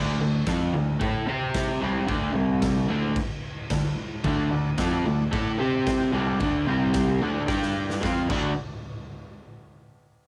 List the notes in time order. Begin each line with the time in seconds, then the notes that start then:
Already playing: D2 D3 A3 D4
0.20 D2 D3 A3
0.46 F2 F3 C4 F4, kick, snare, crash
0.74 D2 D3 A3
0.99 A2 A3 E4 A4, kick, crash
1.26 C3 C4 G4 C5
1.54 kick, snare, crash
1.81 C2 C3 G3 C4
2.07 D2 D3 A3 D4, kick, crash
2.35 C2 C3 G3 C4
2.62 kick, snare, crash
2.88 D2 D3 A3 D4
3.16 kick, crash
3.70 D2 D3 A3, kick, snare, crash
4.24 D2 D3 A3 D4 A4 D5 F#5, kick, crash
4.50 D2 D3 A3 A4 D5 F#5
4.78 F2 F3 C4 F4 A4 D5 F#5, kick, snare, crash
5.04 D2 D3 A3 A4 D5 F#5
5.31 A2 A3 E4 A4 D5 F#5, kick, crash
5.58 C3 C4 G4 C5 G5
5.86 kick, snare, crash
6.12 C2 C3 G3 C4 A4 D5 F#5
6.40 D2 D3 A3 D4, kick, crash
6.66 C2 C3 G3 C4 G4 C5 G5
6.94 kick, snare, crash
7.21 D2 D3 A3 D4 A4 D5 F#5
7.46 G2 G3 D4 G4 D5 G5, kick, snare
7.62 snare
7.75 G4 D5 G5
7.90 snare
8.01 F2 F3 C4 F4, kick, snare
8.05 F4 C5 F5
8.29 D2 D3 A3 D4 F#4 A4 D5 F#5, kick, crash